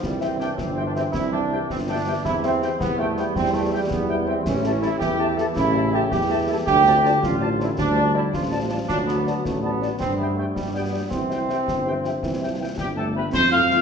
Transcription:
0.03 tuba C2, euphonium E3, trombone section G3, concert bass drum, snare, crash
0.20 trombone section C4, french horn section G4 C5 E5, trumpet section G5, snare
0.39 trombone section D4, french horn section G4 C5 E5, trumpet section G5, snare
0.58 tuba G1, trombone section C4, concert bass drum, snare
0.76 french horn section G4 C5 E5, trumpet section G5
0.87 trombone section D4
0.96 trombone section C4, french horn section G4 C5 E5, trumpet section G5, snare
1.13 tuba C2, trombone section E4, concert bass drum, snare
1.32 trombone section D4, french horn section G4 C5 E5, trumpet section G5
1.51 french horn section G4 C5 E5, trumpet section G5
1.69 tuba G1, trombone section C4, concert bass drum, snare
1.88 trombone section D4, french horn section G4 C5 E5, trumpet section G5
2.06 french horn section G4 C5 E5, trumpet section G5
2.24 tuba E2, euphonium C3, trombone section E4, concert bass drum, snare
2.43 trombone section C4, french horn section G4 C5 E5, trumpet section G5, snare
2.61 french horn section G4 C5 E5, trumpet section G5, snare
2.80 tuba E2, euphonium G3, trombone section B3, concert bass drum, snare
2.98 trombone section A3, french horn section G4 C5 E5, trumpet section G5
3.16 trombone section B3, french horn section G4 C5 E5, trumpet section G5, snare
3.35 tuba E2, trombone section C4, concert bass drum, snare
3.53 trombone section A3, french horn section G4 C5 E5, trumpet section G5
3.71 trombone section G3, french horn section G4 C5 E5, trumpet section G5
3.89 tuba E2, trombone section B3, concert bass drum, snare
4.09 french horn section G4 C5 E5, trumpet section G5
4.27 trombone section C4, french horn section G4 C5 E5, trumpet section G5
4.43 tuba A1, euphonium E3, trombone section C#4, concert bass drum, snare, crash
4.64 french horn section G4 A4 E5, trumpet section A5, snare
4.82 trombone section E4, french horn section G4 A4 E5, trumpet section A5, snare
4.99 tuba E2, euphonium E3, trombone section G4, concert bass drum, snare
5.20 french horn section G4 A4 E5, trumpet section A5
5.36 french horn section G4 A4 E5, trombone section A4, trumpet section A5, snare
5.55 tuba A1, euphonium C#3, trombone section E4, concert bass drum, snare
5.75 french horn section G4 A4 E5, trumpet section A5
5.92 french horn section G4 A4 E5, trombone section G4, trumpet section A5
6.11 tuba E2, euphonium E3, trombone section G4, concert bass drum, snare
6.29 french horn section G4 A4 E5, trumpet section A5
6.48 trombone section E4, french horn section G4 A4 E5, trumpet section A5
6.66 tuba D2, euphonium D3, trombone section G4, concert bass drum, snare
6.86 euphonium C3, french horn section F4 C5 D5, trumpet section A5, snare
7.04 euphonium D3, french horn section F4 C5 D5, trumpet section A5, snare
7.23 tuba A1, trombone section F4, concert bass drum, snare
7.41 french horn section F4 C5 D5, trumpet section A5
7.59 trombone section E4, french horn section F4 C5 D5, trumpet section A5, snare
7.78 tuba D2, euphonium G3, trombone section D4, concert bass drum, snare
7.96 french horn section F4 C5 D5, trumpet section A5
8.14 trombone section E4, french horn section F4 C5 D5, trumpet section A5
8.34 tuba A1, euphonium F3, trombone section F4, concert bass drum, snare
8.51 french horn section F4 C5 D5, trumpet section A5
8.69 french horn section F4 C5 D5, trumpet section A5
8.89 tuba D2, euphonium F#3, trombone section D4, concert bass drum, snare, crash
9.06 trombone section B3, french horn section F#4 C5 D5, trumpet section A5, snare
9.25 french horn section F#4 C5 D5, trumpet section A5, snare
9.45 tuba A1, trombone section A3, concert bass drum, snare
9.62 trombone section B3, french horn section F#4 C5 D5, trumpet section A5
9.82 french horn section F#4 C5 D5, trumpet section A5, snare
9.99 tuba G2, euphonium G3, trombone section C4, concert bass drum, snare
10.17 trombone section B3, french horn section G4 C5 E5, trumpet section G5
10.36 trombone section A3, french horn section G4 C5 E5, trumpet section G5
10.55 tuba G2, trombone section G3, concert bass drum, snare
10.73 trombone section B3, french horn section G4 D5, trumpet section G5
10.92 french horn section G4 D5, trumpet section G5
11.10 tuba C2, euphonium E3, trombone section C4, concert bass drum, snare
11.30 french horn section G4 C5 E5, trumpet section G5, snare
11.49 french horn section G4 C5 E5, trumpet section G5, snare
11.66 tuba G1, euphonium C3, concert bass drum, snare
11.85 euphonium E3, french horn section G4 C5 E5, trumpet section G5
12.04 euphonium F3, french horn section G4 C5 E5, trumpet section G5, snare
12.22 tuba C2, euphonium E3, concert bass drum, snare
12.40 french horn section G4 C5 E5, trumpet section G5
12.50 euphonium F3
12.59 euphonium E3, french horn section G4 C5 E5, trumpet section G5
12.78 tuba G1, euphonium G3, trumpet section G4, piccolo G5, concert bass drum, snare
12.96 euphonium A3, french horn section G4 C5 E5, trumpet section A4 G5, piccolo A5
13.14 euphonium B3, french horn section G4 C5 E5, trumpet section B4 G5, piccolo B5
13.32 tuba F2, euphonium C4, trumpet section C5, piccolo C6, concert bass drum, snare, crash
13.51 french horn section A3 C4 F4, euphonium F4, trumpet section F5, piccolo F6
13.70 french horn section A3 C4 F4, snare

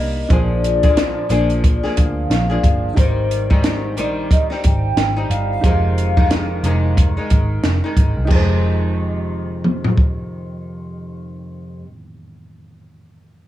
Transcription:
Already playing: picked electric bass C2, reed electric piano D3 F4 G4 A#4, nylon-string guitar G3 A#3 D4, soft synth lead D#5
0.29 picked electric bass A#1, nylon-string guitar F3 A#3 D4 G#4, reed electric piano D4 F4 G#4, soft synth lead D5, kick, closed hi-hat
0.33 reed electric piano C5
0.64 closed hi-hat
0.83 nylon-string guitar A#2 D3 F3 A#3 D4 G#4, kick, closed hi-hat
0.97 snare, closed hi-hat
1.29 picked electric bass A#1, nylon-string guitar F3 A#3 D4 G#4, closed hi-hat
1.50 closed hi-hat
1.64 kick, closed hi-hat
1.83 nylon-string guitar F3 A#3 D4 G#4, snare
1.97 picked electric bass D2, soft synth lead F5, kick, closed hi-hat
2.30 picked electric bass A#1, snare, closed hi-hat
2.50 nylon-string guitar F3 A#3 D4 G#4
2.63 picked electric bass G1, kick, closed hi-hat
2.94 picked electric bass G#1, nylon-string guitar D#3 G3 C4, reed electric piano D#4 G4 A#4, kick, closed hi-hat
2.98 nylon-string guitar D#4, soft synth lead C5, reed electric piano C5
3.31 closed hi-hat
3.50 nylon-string guitar G#2 D#3 G3 C4 D#4, kick
3.64 snare, closed hi-hat
3.97 picked electric bass A#1, nylon-string guitar D#3 G3 C4 D#4, soft synth lead D5, closed hi-hat
4.31 soft synth lead D#5, kick, closed hi-hat
4.50 nylon-string guitar G3 C4 D#4, snare
4.64 picked electric bass G#1, soft synth lead G5, kick, closed hi-hat
4.97 picked electric bass G#1, snare, closed hi-hat
5.16 nylon-string guitar G3 C4 D#4
5.30 picked electric bass G1, soft synth lead F5, closed hi-hat
5.61 picked electric bass F1, nylon-string guitar C3 D#3, reed electric piano D#4 G4 G#4, kick, closed hi-hat
5.65 nylon-string guitar G#3 D#4, reed electric piano C5
5.98 closed hi-hat
6.17 nylon-string guitar F2 C3 D#3 G#3 D#4, kick
6.31 snare, closed hi-hat
6.63 picked electric bass F1, nylon-string guitar C3 D#3 G#3 D#4, closed hi-hat
6.97 kick, closed hi-hat
7.17 nylon-string guitar D#3 G#3 D#4
7.30 picked electric bass G#1, kick, closed hi-hat
7.64 picked electric bass F1, snare, closed hi-hat
7.84 nylon-string guitar D#3 G#3 D#4
7.97 picked electric bass G#1, kick, closed hi-hat
8.17 picked electric bass C2
8.25 nylon-string guitar F2, reed electric piano D#4 G4
8.30 picked electric bass F1, nylon-string guitar C3 D#3, reed electric piano G#4, kick, crash
8.35 nylon-string guitar G#3, reed electric piano C5
8.40 nylon-string guitar D#4
9.64 mid tom
9.84 floor tom
9.97 kick

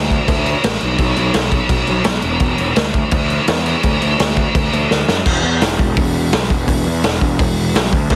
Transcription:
Already playing: picked electric bass D2
0.10 kick, crash
0.28 picked electric bass D2, kick, crash
0.46 crash
0.64 picked electric bass A1, snare, crash
0.81 picked electric bass B1, crash
0.98 picked electric bass B1, kick, crash
1.16 picked electric bass B1, crash
1.34 picked electric bass B1, snare, crash
1.52 kick, crash
1.69 picked electric bass B1, kick, crash
1.87 picked electric bass B1, crash
2.04 picked electric bass B1, snare, crash
2.22 picked electric bass E1, crash
2.40 picked electric bass E1, kick, crash
2.58 picked electric bass E1, crash
2.76 picked electric bass D2, snare, crash
2.94 kick, crash
3.11 picked electric bass D2, kick, crash
3.30 crash
3.47 picked electric bass E2, snare, crash
3.66 crash
3.83 picked electric bass D2, kick, crash
4.02 picked electric bass D2, crash
4.19 picked electric bass D2, snare, crash
4.36 kick, crash
4.55 picked electric bass D2, kick, crash
4.73 picked electric bass D2, crash
4.91 picked electric bass D2, snare
5.08 picked electric bass F#2, snare
5.26 picked electric bass E1, kick, crash
5.43 picked electric bass E2
5.61 picked electric bass E1, snare, open hi-hat
5.79 picked electric bass E1, kick
5.97 picked electric bass E1, kick, open hi-hat
6.32 picked electric bass B1, snare, open hi-hat
6.50 picked electric bass E1, kick
6.68 picked electric bass E1, kick, open hi-hat
6.87 picked electric bass E2
7.03 picked electric bass E1, snare, open hi-hat
7.21 picked electric bass E1, kick
7.39 picked electric bass E1, kick, open hi-hat
7.74 picked electric bass B1, snare, open hi-hat
7.93 picked electric bass D2, kick
8.10 picked electric bass D2, kick, crash

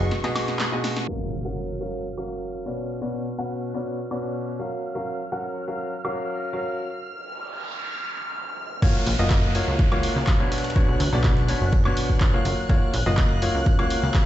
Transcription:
Already playing: grand piano B2 B3 F#4 G#4 D#5, string machine C#6
0.00 analog synth bass F#1
0.11 snare, ride
0.24 grand piano B2 B3 F#4 G#4 D#5, snare, ride
0.36 snare, open hi-hat, high woodblock
0.48 snare, ride
0.59 snare, clap, open hi-hat
0.72 grand piano B2 B3 F#4 G#4 D#5
0.84 snare, open hi-hat, ride
0.97 snare, open hi-hat
1.08 grand piano F#3 C#4 F#4 A#4 F5, string machine F6, impact
1.45 grand piano F#3 C#4 F#4 A#4 F#5
1.81 grand piano F#3 C#4 F#4 A#4 F5
2.18 grand piano F#3 C#4 F#4 A#4 F5, high woodblock
2.66 grand piano B2 C#4 F#4 B4 D5
3.02 grand piano B2 C#4 F#4 B4 D5
3.38 grand piano B2 C#4 F#4 B4 F#5
3.74 grand piano B2 C#4 F#4 B4 D5
4.11 grand piano B2 C#4 F#4 B4 D5, high woodblock
4.59 grand piano F#3 C#4 F#4 A#4 F5
4.95 grand piano F#3 C#4 F#4 A#4 F5
5.32 grand piano F#3 C#4 F#4 A#4 F#5
5.68 grand piano F#3 C#4 F#4 A#4 F5
6.05 grand piano F#3 C#4 F#4 A#4 F5, high woodblock
6.53 grand piano F#3 C#4 F#4 A#4 F5
6.89 noise sweep
8.82 analog synth bass F#1, grand piano A#3 F4 F#4 C#5, string machine F#6, kick, ride, crash, downlifter
9.07 analog synth bass A#1, open hi-hat, ride
9.19 analog synth bass F#1, grand piano A#3 F4 F#4 D#5
9.30 kick, snare, clap, ride
9.55 grand piano A#3 F4 F#4 C#5, open hi-hat, ride
9.68 analog synth bass C#2
9.79 kick, ride
9.92 grand piano A#3 F4 F#4 C#5, ride, high woodblock
10.03 open hi-hat, ride
10.16 analog synth bass C#2
10.27 kick, snare, clap, open hi-hat
10.40 grand piano B2 B3 D4 F#4 C#5
10.52 snare, open hi-hat, ride
10.58 snare, ride
10.64 snare, ride
10.70 snare, ride
10.76 grand piano B2 B3 D4 F#4 C#5, kick, ride
10.89 analog synth bass B1
11.00 analog synth bass D2, open hi-hat, ride
11.13 analog synth bass B1, grand piano B2 B3 D4 F#4 D5
11.24 kick, snare, clap, ride
11.37 snare
11.48 grand piano B2 B3 D4 F#4 C#5, open hi-hat, ride
11.61 analog synth bass F#1
11.73 kick, ride
11.85 grand piano B2 B3 D4 F#4 C#5, clap, high woodblock
11.97 open hi-hat, ride
12.10 kick
12.21 kick, snare, clap, ride
12.34 grand piano A#3 F4 F#4 C#5
12.45 analog synth bass F#1, snare, open hi-hat, ride
12.69 analog synth bass F#1, grand piano A#3 F4 F#4 C#5, kick, ride
12.94 analog synth bass A#1, open hi-hat, ride
13.06 analog synth bass F#1, grand piano A#3 F4 F#4 D#5
13.17 kick, snare, clap, ride
13.42 grand piano A#3 F4 F#4 C#5, open hi-hat, ride
13.55 analog synth bass C#2
13.66 kick, ride
13.79 grand piano A#3 F4 F#4 C#5, ride, high woodblock
13.90 open hi-hat, ride
14.03 analog synth bass C#2
14.14 kick, snare, clap, open hi-hat

